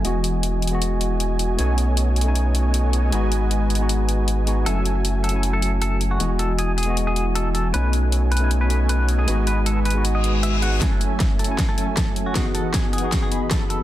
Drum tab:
HH |x---x---x---xx--x---x---x---x---|x---x---x---xx--x---x---x---x---|x---x---x---xx--x---x---x---x---|x---x---x---xx--x---x---x---x---|
SD |--------------------------------|--------------------------------|--------------------------------|--------------------------------|
BD |--------------------------------|--------------------------------|--------------------------------|--------------------------------|

HH |x---x---x---xx--x---x---x---x---|x---x---x---xx--x---x---x---x---|x---x---x---xx--x---x---x---x---|x---x---x---xx--x---x---x---x---|
SD |--------------------------------|--------------------------------|--------------------------------|o-------o-------o-------o-------|
BD |--------------------------------|--------------------------------|--------------------------------|o-------o-------o-------o-------|

HH |x---x---x---xx--x---x---x---x---|
SD |o-------o-------o-------o-------|
BD |o-------o-------o-------o-------|